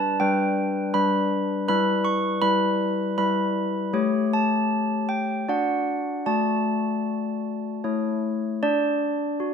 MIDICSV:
0, 0, Header, 1, 2, 480
1, 0, Start_track
1, 0, Key_signature, 2, "major"
1, 0, Tempo, 755668
1, 1063, Time_signature, 3, 2, 24, 8
1, 2991, Tempo, 779221
1, 5966, End_track
2, 0, Start_track
2, 0, Title_t, "Handbells"
2, 0, Program_c, 0, 14
2, 0, Note_on_c, 0, 55, 66
2, 0, Note_on_c, 0, 62, 57
2, 0, Note_on_c, 0, 71, 58
2, 0, Note_on_c, 0, 81, 98
2, 101, Note_off_c, 0, 62, 0
2, 101, Note_off_c, 0, 71, 0
2, 102, Note_off_c, 0, 55, 0
2, 104, Note_off_c, 0, 81, 0
2, 126, Note_on_c, 0, 62, 53
2, 126, Note_on_c, 0, 79, 101
2, 129, Note_on_c, 0, 55, 66
2, 132, Note_on_c, 0, 71, 55
2, 580, Note_off_c, 0, 79, 0
2, 585, Note_off_c, 0, 62, 0
2, 586, Note_off_c, 0, 55, 0
2, 588, Note_off_c, 0, 71, 0
2, 594, Note_on_c, 0, 71, 52
2, 597, Note_on_c, 0, 83, 101
2, 598, Note_on_c, 0, 62, 57
2, 599, Note_on_c, 0, 55, 70
2, 1046, Note_off_c, 0, 83, 0
2, 1050, Note_off_c, 0, 71, 0
2, 1051, Note_off_c, 0, 62, 0
2, 1052, Note_off_c, 0, 55, 0
2, 1067, Note_on_c, 0, 71, 60
2, 1070, Note_on_c, 0, 83, 108
2, 1074, Note_on_c, 0, 55, 70
2, 1074, Note_on_c, 0, 64, 58
2, 1296, Note_off_c, 0, 83, 0
2, 1299, Note_on_c, 0, 85, 104
2, 1529, Note_off_c, 0, 71, 0
2, 1530, Note_off_c, 0, 64, 0
2, 1530, Note_off_c, 0, 85, 0
2, 1531, Note_off_c, 0, 55, 0
2, 1535, Note_on_c, 0, 83, 108
2, 1536, Note_on_c, 0, 71, 53
2, 1537, Note_on_c, 0, 64, 52
2, 1538, Note_on_c, 0, 55, 68
2, 2001, Note_off_c, 0, 83, 0
2, 2007, Note_off_c, 0, 64, 0
2, 2007, Note_off_c, 0, 71, 0
2, 2008, Note_off_c, 0, 55, 0
2, 2019, Note_on_c, 0, 83, 100
2, 2021, Note_on_c, 0, 55, 63
2, 2022, Note_on_c, 0, 71, 53
2, 2023, Note_on_c, 0, 64, 56
2, 2486, Note_off_c, 0, 83, 0
2, 2492, Note_off_c, 0, 55, 0
2, 2492, Note_off_c, 0, 71, 0
2, 2493, Note_off_c, 0, 64, 0
2, 2499, Note_on_c, 0, 57, 67
2, 2501, Note_on_c, 0, 67, 55
2, 2501, Note_on_c, 0, 73, 59
2, 2753, Note_on_c, 0, 81, 98
2, 3210, Note_off_c, 0, 81, 0
2, 3224, Note_on_c, 0, 79, 84
2, 3435, Note_off_c, 0, 57, 0
2, 3436, Note_off_c, 0, 67, 0
2, 3436, Note_off_c, 0, 73, 0
2, 3453, Note_off_c, 0, 79, 0
2, 3469, Note_on_c, 0, 66, 44
2, 3469, Note_on_c, 0, 74, 49
2, 3470, Note_on_c, 0, 62, 54
2, 3475, Note_on_c, 0, 78, 83
2, 3929, Note_off_c, 0, 78, 0
2, 3931, Note_off_c, 0, 62, 0
2, 3931, Note_off_c, 0, 66, 0
2, 3931, Note_off_c, 0, 74, 0
2, 3946, Note_on_c, 0, 74, 48
2, 3948, Note_on_c, 0, 81, 84
2, 3949, Note_on_c, 0, 66, 47
2, 3950, Note_on_c, 0, 57, 57
2, 4891, Note_off_c, 0, 74, 0
2, 4892, Note_off_c, 0, 57, 0
2, 4892, Note_off_c, 0, 66, 0
2, 4920, Note_on_c, 0, 73, 44
2, 4921, Note_on_c, 0, 64, 44
2, 4923, Note_on_c, 0, 57, 54
2, 5135, Note_off_c, 0, 81, 0
2, 5387, Note_off_c, 0, 73, 0
2, 5388, Note_off_c, 0, 64, 0
2, 5389, Note_off_c, 0, 57, 0
2, 5405, Note_on_c, 0, 74, 97
2, 5406, Note_on_c, 0, 62, 73
2, 5880, Note_on_c, 0, 66, 55
2, 5966, Note_off_c, 0, 62, 0
2, 5966, Note_off_c, 0, 66, 0
2, 5966, Note_off_c, 0, 74, 0
2, 5966, End_track
0, 0, End_of_file